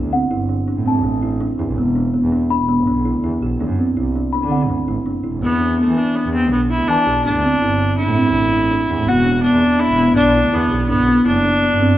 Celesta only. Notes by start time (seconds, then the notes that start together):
0.13 F#5
0.88 A5
2.50 B5
4.33 B5
4.51 F#5
6.90 A5
9.09 F#5
10.16 D5